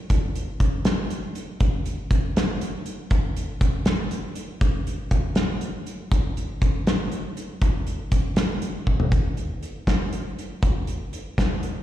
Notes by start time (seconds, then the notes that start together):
0.10 kick, closed hi-hat
0.35 closed hi-hat
0.60 kick, closed hi-hat
0.85 snare, closed hi-hat
1.10 closed hi-hat
1.35 closed hi-hat
1.60 kick, closed hi-hat
1.86 closed hi-hat
2.11 kick, closed hi-hat
2.36 snare, closed hi-hat
2.61 closed hi-hat
2.86 closed hi-hat
3.10 kick, closed hi-hat
3.36 closed hi-hat
3.61 kick, closed hi-hat
3.85 snare, closed hi-hat
4.11 closed hi-hat
4.35 closed hi-hat
4.61 kick, closed hi-hat
4.87 closed hi-hat
5.11 kick, closed hi-hat
5.35 snare, closed hi-hat
5.61 closed hi-hat
5.87 closed hi-hat
6.12 kick, closed hi-hat
6.37 closed hi-hat
6.62 kick, closed hi-hat
6.87 snare, closed hi-hat
7.12 closed hi-hat
7.37 closed hi-hat
7.61 kick, closed hi-hat
7.87 closed hi-hat
8.12 kick, closed hi-hat
8.36 snare, closed hi-hat
8.62 closed hi-hat
8.87 kick
9.00 floor tom
9.12 kick, closed hi-hat
9.37 closed hi-hat
9.63 closed hi-hat
9.87 kick, snare, closed hi-hat
10.13 closed hi-hat
10.39 closed hi-hat
10.63 kick, closed hi-hat
10.87 closed hi-hat
11.13 closed hi-hat
11.38 kick, snare, closed hi-hat
11.63 closed hi-hat